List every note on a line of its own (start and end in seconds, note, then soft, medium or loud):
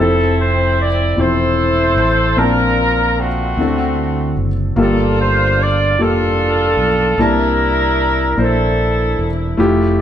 0.00 1.13 F1 medium
0.00 0.86 F3 medium
0.00 0.85 C4 medium
0.00 1.14 C4 medium
0.00 0.85 E4 medium
0.00 1.14 E4 medium
0.00 0.35 A4 medium
0.00 0.86 A4 medium
0.00 0.15 C5 medium
0.41 0.79 C5 medium
0.81 1.16 D5 medium
1.17 1.98 E1 medium
1.17 2.07 F3 soft
1.17 2.06 C4 medium
1.17 2.06 E4 medium
1.17 2.35 E4 medium
1.17 2.34 A4 medium
1.17 2.07 C5 medium
1.17 2.39 C5 medium
1.98 2.34 A1 medium
2.37 3.53 A#1 medium
2.37 3.54 A#2 soft
2.37 3.26 C4 medium
2.37 3.26 D4 medium
2.37 3.54 D4 medium
2.37 3.54 F4 medium
2.37 3.17 A#4 medium
2.37 3.27 A#4 medium
2.37 3.27 A5 medium
3.19 4.34 A3 soft
3.19 4.34 C4 medium
3.19 4.38 F#4 medium
3.57 4.33 D2 medium
3.57 4.74 D3 medium
3.57 4.47 C4 medium
3.57 4.47 D4 soft
3.57 3.65 E4 soft
3.57 4.48 A4 medium
3.66 4.51 F#4 soft
4.37 4.74 F#1 medium
4.76 5.98 G1 medium
4.76 5.94 G2 medium
4.76 5.66 A#3 medium
4.76 5.95 D4 medium
4.76 5.66 F4 medium
4.76 5.66 G4 medium
4.76 5.67 A4 medium
4.80 5.95 F4 medium
4.80 5.17 A4 medium
5.21 5.59 C5 medium
5.62 6.00 D5 medium
5.98 6.74 F1 medium
5.98 6.87 A#3 medium
5.98 7.15 D4 medium
5.98 6.87 F4 soft
5.98 7.16 F4 medium
5.98 6.87 G4 soft
5.98 6.88 A4 medium
5.98 7.20 A4 medium
6.77 7.14 B1 medium
7.18 8.34 C2 medium
7.18 8.34 C3 medium
7.18 8.07 A#3 medium
7.18 8.07 D4 medium
7.18 8.35 D4 medium
7.18 8.07 E4 medium
7.18 8.35 E4 medium
7.18 8.39 A#4 medium
7.18 8.08 A5 medium
8.37 9.14 A#1 medium
8.37 9.26 A#3 soft
8.37 9.26 D4 soft
8.37 9.27 E4 soft
8.37 9.27 C5 medium
8.43 9.56 D4 soft
8.43 9.56 E4 soft
8.43 9.30 A4 medium
9.19 9.55 E1 medium
9.57 10.01 F1 medium
9.57 10.01 A3 medium
9.57 10.01 E4 medium
9.57 10.01 F4 medium
9.57 10.01 G4 medium